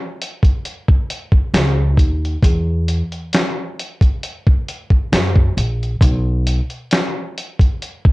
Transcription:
0.22 closed hi-hat medium
0.43 kick medium
0.43 closed hi-hat soft
0.65 closed hi-hat medium
0.88 kick medium
1.10 closed hi-hat medium
1.32 kick medium
1.54 1.98 C#2 medium
1.54 snare loud
1.54 closed hi-hat medium
1.97 2.35 D#2 medium
1.97 kick medium
1.97 closed hi-hat medium
2.25 closed hi-hat soft
2.43 3.00 E2 loud
2.43 kick loud
2.43 closed hi-hat medium
2.88 closed hi-hat medium
3.12 closed hi-hat soft
3.33 snare loud
3.33 closed hi-hat medium
3.79 closed hi-hat medium
4.01 kick medium
4.01 closed hi-hat soft
4.23 closed hi-hat medium
4.47 kick medium
4.68 closed hi-hat medium
4.90 kick medium
5.12 5.49 F#2 medium
5.12 snare loud
5.12 closed hi-hat medium
5.36 kick loud
5.57 5.94 A#1 medium
5.57 closed hi-hat medium
5.83 closed hi-hat soft
6.01 6.59 B1 loud
6.01 kick loud
6.01 closed hi-hat medium
6.47 closed hi-hat medium
6.70 closed hi-hat soft
6.91 snare loud
6.91 closed hi-hat medium
7.38 closed hi-hat medium
7.59 kick medium
7.59 closed hi-hat soft
7.82 closed hi-hat medium
8.05 kick medium

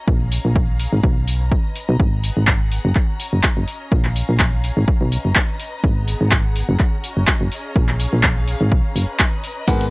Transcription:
0.00 2.39 C#4 medium
0.00 0.32 D#5 medium
0.00 9.90 A#5 medium
0.06 0.39 A#1 loud
0.06 1.43 F5 medium
0.06 kick loud
0.13 1.43 G#4 medium
0.32 open hi-hat loud
0.45 0.87 A#1 medium
0.56 kick loud
0.80 open hi-hat medium
0.93 1.01 G#1 loud
1.04 1.59 B1 loud
1.04 kick loud
1.28 2.39 B4 medium
1.28 open hi-hat loud
1.47 2.39 D#5 medium
1.52 kick medium
1.76 open hi-hat medium
1.89 1.97 B1 loud
1.99 2.31 G#1 loud
1.99 2.96 B3 medium
1.99 kick loud
2.07 3.25 G#4 medium
2.21 3.25 F#5 medium
2.21 open hi-hat loud
2.37 2.79 G#1 medium
2.47 kick loud
2.47 clap loud
2.72 open hi-hat medium
2.85 2.93 F#1 loud
2.95 6.23 C#4 medium
2.95 kick loud
2.95 clap soft
3.01 3.68 F#4 medium
3.20 open hi-hat loud
3.29 4.16 D#5 medium
3.33 3.41 F#1 medium
3.43 kick loud
3.43 clap loud
3.57 3.65 F#1 medium
3.68 open hi-hat medium
3.83 5.27 G#4 medium
3.88 4.23 A#1 loud
3.88 5.27 F5 medium
3.88 kick loud
4.05 clap soft
4.16 open hi-hat loud
4.29 4.71 A#1 medium
4.39 kick loud
4.39 clap loud
4.64 open hi-hat medium
4.77 4.85 G#1 loud
4.88 kick loud
5.01 5.18 B1 loud
5.01 6.23 B4 medium
5.07 6.23 D#5 medium
5.12 open hi-hat loud
5.25 5.33 F#1 medium
5.35 kick medium
5.35 clap loud
5.60 open hi-hat medium
5.84 6.15 G#1 loud
5.84 6.80 B3 medium
5.84 kick loud
5.97 7.09 G#4 medium
6.08 open hi-hat medium
6.21 6.63 G#1 medium
6.27 7.09 F#5 medium
6.27 clap loud
6.32 kick loud
6.56 open hi-hat medium
6.69 6.77 F#1 loud
6.80 9.90 C#4 medium
6.80 kick loud
6.80 clap soft
7.04 7.52 F#4 medium
7.04 open hi-hat loud
7.13 7.25 F#1 medium
7.13 8.00 D#5 medium
7.27 kick medium
7.27 clap loud
7.41 7.49 F#1 medium
7.52 open hi-hat medium
7.58 9.11 G#4 medium
7.67 9.11 F5 medium
7.76 8.07 A#1 loud
7.76 kick loud
7.89 clap soft
8.00 open hi-hat loud
8.13 8.55 A#1 medium
8.23 kick loud
8.23 clap loud
8.48 open hi-hat medium
8.61 8.73 G#1 loud
8.72 8.81 B1 loud
8.72 kick loud
8.96 9.05 F#1 medium
8.96 9.90 B4 medium
8.96 open hi-hat loud
9.15 9.90 D#5 medium
9.15 clap loud
9.20 kick medium
9.44 open hi-hat medium
9.67 9.90 G#1 loud
9.67 9.83 G#2 medium
9.67 9.90 B3 medium
9.67 9.83 B3 medium
9.67 9.83 G#4 medium
9.67 9.83 A#4 medium
9.67 9.83 F#5 medium
9.67 kick loud
9.67 closed hi-hat medium
9.67 crash medium
9.81 closed hi-hat medium
9.81 closed hi-hat soft

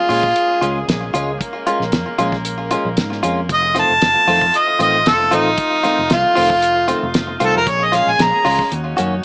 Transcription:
0.00 1.38 G#3 medium
0.00 1.39 A#3 medium
0.00 3.46 C#4 medium
0.00 0.87 F4 loud
0.00 1.38 G#4 medium
0.09 0.32 A#2 medium
0.09 0.27 G#3 medium
0.09 0.26 C#4 medium
0.09 0.26 F4 medium
0.09 open hi-hat medium
0.23 kick medium
0.36 closed hi-hat medium
0.61 0.84 C#2 loud
0.61 0.79 G#3 medium
0.61 0.79 C#4 medium
0.61 0.78 F4 medium
0.61 closed hi-hat medium
0.88 1.10 A#1 loud
0.88 snare loud
0.88 closed hi-hat medium
1.14 1.36 C#2 medium
1.14 1.32 G#3 medium
1.14 1.31 C#4 medium
1.14 1.30 F4 medium
1.14 closed hi-hat medium
1.39 3.47 A#3 medium
1.39 3.47 A#4 medium
1.39 kick loud
1.39 closed hi-hat medium
1.67 1.84 G#3 medium
1.67 1.83 C#4 medium
1.67 1.83 F4 medium
1.67 closed hi-hat medium
1.80 1.91 A#1 loud
1.80 snare soft
1.92 2.04 F2 medium
1.92 snare loud
1.92 closed hi-hat medium
2.19 2.75 A#1 medium
2.19 2.36 G#3 medium
2.19 2.35 C#4 medium
2.19 2.35 F4 medium
2.19 closed hi-hat medium
2.32 kick medium
2.32 snare soft
2.45 closed hi-hat medium
2.71 2.89 G#3 medium
2.71 2.88 C#4 medium
2.71 2.87 F4 medium
2.71 closed hi-hat medium
2.85 2.95 A#1 loud
2.97 3.21 G#2 medium
2.97 snare loud
2.97 closed hi-hat medium
3.12 snare soft
3.23 3.47 F2 medium
3.23 3.41 G#3 medium
3.23 3.40 C#4 medium
3.23 3.39 F4 medium
3.23 closed hi-hat medium
3.49 3.83 F1 loud
3.49 7.65 F3 medium
3.49 7.64 A3 medium
3.49 7.65 D#4 medium
3.49 7.65 F4 medium
3.49 3.77 D#5 loud
3.49 kick loud
3.49 closed hi-hat medium
3.75 3.93 D#3 medium
3.75 3.92 A3 medium
3.75 3.92 C4 medium
3.75 3.91 F4 medium
3.75 snare soft
3.75 closed hi-hat medium
3.79 4.59 A5 loud
3.89 4.00 F1 medium
4.01 4.14 F1 medium
4.01 snare loud
4.01 closed hi-hat medium
4.27 4.50 F2 medium
4.27 4.45 D#3 medium
4.27 4.45 A3 medium
4.27 4.44 C4 medium
4.27 4.44 F4 medium
4.27 open hi-hat medium
4.41 kick medium
4.54 4.81 D#5 medium
4.54 closed hi-hat medium
4.79 5.02 A1 loud
4.79 4.97 D#3 medium
4.79 4.97 A3 medium
4.79 4.96 C4 medium
4.79 4.96 F4 medium
4.79 5.10 D#5 loud
4.79 closed hi-hat medium
5.06 5.28 F1 medium
5.06 5.36 A4 loud
5.06 snare loud
5.06 closed hi-hat medium
5.31 5.54 A1 medium
5.31 5.49 D#3 medium
5.31 5.49 A3 medium
5.31 5.49 C4 medium
5.31 6.10 D#4 loud
5.31 5.48 F4 medium
5.31 closed hi-hat medium
5.58 kick loud
5.58 closed hi-hat medium
5.83 6.02 D#3 soft
5.83 6.01 A3 medium
5.83 6.01 C4 medium
5.83 6.00 F4 medium
5.83 snare soft
5.83 closed hi-hat medium
5.99 6.09 F1 medium
6.10 6.23 C2 medium
6.10 7.13 F4 loud
6.10 snare loud
6.10 closed hi-hat medium
6.35 6.93 F1 medium
6.35 6.54 D#3 medium
6.35 6.53 A3 medium
6.35 6.53 C4 medium
6.35 6.52 F4 medium
6.35 open hi-hat medium
6.50 kick medium
6.62 closed hi-hat medium
6.88 7.06 D#3 medium
6.88 7.06 A3 medium
6.88 7.05 C4 medium
6.88 7.05 F4 medium
6.88 closed hi-hat medium
7.03 7.36 F1 loud
7.14 snare loud
7.14 closed hi-hat medium
7.40 7.56 C2 medium
7.40 7.58 D#3 medium
7.40 7.58 A3 medium
7.40 7.57 C4 medium
7.40 7.57 F4 medium
7.40 7.55 A4 medium
7.40 closed hi-hat medium
7.55 7.65 F1 loud
7.55 7.71 A#4 medium
7.67 8.01 A#1 loud
7.67 8.70 G#3 medium
7.67 8.71 A#3 medium
7.67 9.25 C#4 medium
7.67 8.70 G#4 medium
7.67 7.85 C#5 medium
7.67 kick loud
7.67 closed hi-hat medium
7.84 7.96 D#5 medium
7.92 8.10 G#3 soft
7.92 8.10 C#4 medium
7.92 8.09 F4 medium
7.92 8.12 F5 loud
7.92 snare soft
7.92 closed hi-hat medium
8.07 8.18 A#1 medium
8.07 8.24 G#5 loud
8.19 8.31 A#1 loud
8.19 8.72 A#5 loud
8.19 snare loud
8.19 closed hi-hat medium
8.45 8.57 C#2 loud
8.45 8.62 G#3 medium
8.45 8.62 C#4 medium
8.45 8.61 F4 medium
8.45 open hi-hat medium
8.59 kick medium
8.59 snare soft
8.72 8.94 D#2 loud
8.72 9.25 F#3 medium
8.72 9.25 D#4 medium
8.72 9.25 F#4 medium
8.72 closed hi-hat loud
8.97 9.21 F#2 loud
8.97 9.15 D#3 medium
8.97 9.14 A#3 medium
8.97 9.14 C#4 medium
8.97 9.14 F#4 medium
8.97 closed hi-hat medium

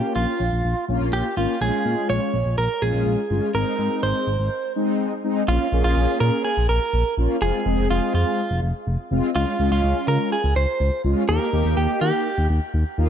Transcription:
0.00 0.43 A#3 medium
0.00 0.43 C#4 medium
0.00 0.43 F4 medium
0.00 0.15 G4 loud
0.16 0.26 A#1 loud
0.16 0.84 F4 medium
0.40 0.50 A#1 loud
0.52 0.62 A#1 loud
0.64 0.75 A#1 loud
0.88 0.99 A#1 loud
0.88 1.26 A#3 medium
0.88 1.26 C#4 medium
0.88 1.26 F4 medium
1.01 1.11 A#1 loud
1.13 1.23 A#1 loud
1.13 1.35 G4 medium
1.37 1.47 G#1 medium
1.37 1.56 A#3 medium
1.37 1.56 C#4 medium
1.37 1.56 F4 medium
1.37 1.61 F4 medium
1.61 1.71 A#1 loud
1.61 2.36 G#3 medium
1.61 2.36 C#4 medium
1.61 2.36 F4 medium
1.61 2.09 G#4 loud
1.85 1.95 A#2 loud
2.09 2.20 A#1 loud
2.09 2.58 C#5 loud
2.34 2.44 A#1 loud
2.46 2.56 A#1 loud
2.58 2.68 A#1 loud
2.58 2.83 A#4 loud
2.82 2.92 A#1 loud
2.82 3.20 G#3 medium
2.82 3.20 C#4 medium
2.82 3.20 F4 medium
2.82 3.51 G#4 loud
2.94 3.04 A#1 medium
3.06 3.16 A#1 loud
3.30 3.41 G1 loud
3.30 3.49 G#3 medium
3.30 3.49 C#4 medium
3.30 3.49 F4 medium
3.54 3.65 G#1 loud
3.54 4.30 G#3 medium
3.54 4.30 C4 medium
3.54 4.30 D#4 medium
3.54 4.03 A#4 loud
3.79 3.89 G#2 medium
4.03 4.13 G#1 loud
4.03 4.72 C5 medium
4.27 4.37 G#1 loud
4.39 4.49 G#1 loud
4.76 5.13 G#3 medium
4.76 5.13 C4 medium
4.76 5.13 D#4 medium
5.24 5.43 G#3 medium
5.24 5.43 C4 medium
5.24 5.43 D#4 loud
5.48 5.58 A#1 loud
5.48 5.67 A#3 medium
5.48 5.67 C#4 medium
5.48 5.67 F4 medium
5.48 5.83 F4 medium
5.72 5.83 A#1 loud
5.72 6.48 A#3 medium
5.72 6.48 C#4 medium
5.72 6.48 G#4 medium
5.84 5.95 A#1 medium
5.84 6.18 F4 medium
5.97 6.07 A#1 loud
6.20 6.31 A#2 loud
6.20 6.43 A#4 loud
6.44 6.69 G#4 loud
6.57 6.67 A#1 loud
6.69 6.79 A#1 loud
6.69 7.14 A#4 loud
6.93 7.04 A#1 loud
7.17 7.28 A#1 loud
7.17 7.36 A#3 medium
7.17 7.36 C#4 medium
7.17 7.36 F4 medium
7.42 7.52 F1 loud
7.42 7.60 G#3 medium
7.42 7.61 C4 medium
7.42 7.61 F4 medium
7.42 7.90 G#4 loud
7.66 7.76 F1 loud
7.66 8.41 G#3 medium
7.66 8.41 C4 medium
7.66 8.41 G#4 medium
7.78 7.88 F1 loud
7.90 8.00 F1 loud
7.90 8.14 F4 loud
8.14 8.24 F2 loud
8.14 8.60 F4 medium
8.51 8.61 F1 loud
8.63 8.73 F1 loud
8.87 8.97 F1 loud
9.11 9.21 F1 loud
9.11 9.30 G#3 medium
9.11 9.30 C4 medium
9.11 9.30 F4 loud
9.35 9.45 C#2 loud
9.35 9.54 G#3 medium
9.35 9.54 C#4 medium
9.35 9.54 F4 medium
9.35 9.71 F4 medium
9.59 9.70 C#2 loud
9.59 10.35 G#3 medium
9.59 10.35 C#4 medium
9.59 10.35 F4 medium
9.71 9.82 C#2 loud
9.71 10.08 F4 medium
9.84 9.94 C#2 loud
10.08 10.18 C#3 loud
10.08 10.32 A#4 loud
10.32 10.56 G#4 loud
10.44 10.54 C#2 loud
10.56 10.66 C#2 loud
10.56 11.01 C5 loud
10.80 10.90 C#2 loud
11.04 11.15 C#2 loud
11.04 11.23 G#3 medium
11.04 11.23 C#4 medium
11.04 11.23 F4 medium
11.29 11.39 D#2 loud
11.29 11.47 A#3 medium
11.29 11.47 D#4 medium
11.29 11.47 G4 medium
11.29 11.77 A#4 loud
11.53 11.63 D#2 loud
11.53 12.28 A#3 medium
11.53 12.28 D#4 medium
11.53 12.28 G4 medium
11.65 11.75 D#2 loud
11.77 11.87 D#2 loud
11.77 12.00 G4 loud
12.01 12.12 D#3 loud
12.01 12.46 G4 medium
12.38 12.48 D#2 medium
12.50 12.60 D#2 loud
12.74 12.84 D#2 loud
12.98 13.08 D#2 loud
12.98 13.09 A#3 medium
12.98 13.09 D#4 medium
12.98 13.09 F4 loud

